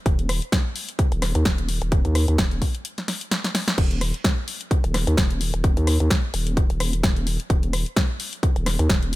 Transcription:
0.06 D#1, kick, closed hi-hat
0.19 closed hi-hat
0.29 cross-stick, open hi-hat
0.42 closed hi-hat
0.52 kick, snare, closed hi-hat
0.76 open hi-hat
0.89 closed hi-hat
0.99 kick, closed hi-hat
1.12 D#1, closed hi-hat
1.22 cross-stick, snare, open hi-hat
1.35 D#2, closed hi-hat
1.45 D#1, kick, snare, closed hi-hat
1.58 closed hi-hat
1.69 open hi-hat
1.82 D#1, closed hi-hat
1.92 kick, closed hi-hat
2.05 D#2, closed hi-hat
2.15 cross-stick, open hi-hat
2.28 D#2, closed hi-hat
2.38 D#1, kick, snare, closed hi-hat
2.51 closed hi-hat
2.62 kick, open hi-hat
2.75 closed hi-hat
2.85 closed hi-hat
2.98 snare, closed hi-hat
3.08 snare, open hi-hat
3.21 closed hi-hat
3.31 snare, closed hi-hat
3.44 snare, closed hi-hat
3.55 snare, open hi-hat
3.68 snare, closed hi-hat
3.78 D#1, kick, closed hi-hat, crash
3.91 closed hi-hat
4.01 cross-stick, open hi-hat
4.14 closed hi-hat
4.24 kick, snare, closed hi-hat
4.48 open hi-hat
4.61 closed hi-hat
4.71 kick, closed hi-hat
4.84 D#1, closed hi-hat
4.94 cross-stick, snare, open hi-hat
5.07 D#2, closed hi-hat
5.17 D#1, kick, snare, closed hi-hat
5.31 closed hi-hat
5.41 open hi-hat
5.54 D#1, closed hi-hat
5.64 kick, closed hi-hat
5.77 D#2, closed hi-hat
5.87 cross-stick, open hi-hat
6.00 D#2, closed hi-hat
6.10 kick, snare, closed hi-hat
6.34 D#1, open hi-hat
6.47 closed hi-hat
6.57 kick, closed hi-hat
6.70 D#1, closed hi-hat
6.80 cross-stick, open hi-hat
6.93 closed hi-hat
7.03 D#1, kick, snare, closed hi-hat
7.17 closed hi-hat
7.27 open hi-hat
7.40 closed hi-hat
7.50 D#1, kick, closed hi-hat
7.63 closed hi-hat
7.73 cross-stick, open hi-hat
7.86 closed hi-hat
7.96 kick, snare, closed hi-hat
8.20 open hi-hat
8.33 closed hi-hat
8.43 kick, closed hi-hat
8.56 D#1, closed hi-hat
8.66 cross-stick, snare, open hi-hat
8.79 D#2, closed hi-hat
8.90 D#1, kick, snare, closed hi-hat
9.03 closed hi-hat

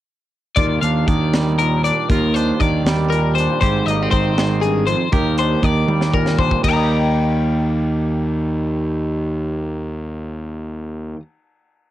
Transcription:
0.56 D#2 F4 D5, kick, closed hi-hat
0.81 D#2 D4 F5, closed hi-hat
1.07 D#2 D#3 D5, kick, closed hi-hat
1.33 G3, snare, closed hi-hat
1.58 A#2 A#4, closed hi-hat
1.84 D4 D5, closed hi-hat
2.09 D#2 F4 A#4, kick, closed hi-hat
2.34 D4 C5, closed hi-hat
2.60 D#2 D#3 D5, kick, closed hi-hat
2.85 D#2 G3, snare, closed hi-hat
3.10 A#2 A#4, closed hi-hat
3.35 C5, closed hi-hat
3.40 D4
3.61 G#1 G#2 G4 C5, kick, closed hi-hat
3.86 G#1 D#5, closed hi-hat
3.90 A#3
4.02 C4
4.11 G#1 D#3 C5, kick, closed hi-hat
4.37 G#2, snare, closed hi-hat
4.62 G2 G#4, closed hi-hat
4.87 F2 C5, closed hi-hat
5.12 D#2 G4 A#4, kick, closed hi-hat
5.38 D4 C5, closed hi-hat
5.62 D#2 D#3 D5, kick, closed hi-hat
5.88 D#2 G3, high tom
6.01 snare
6.13 A#2 A#4, kick
6.26 snare
6.38 D4 C5, kick
6.51 kick
6.63 D#2 D#5, kick, ride bell
6.68 D#3 G5 A#5
6.73 G3 D#5
6.84 G4

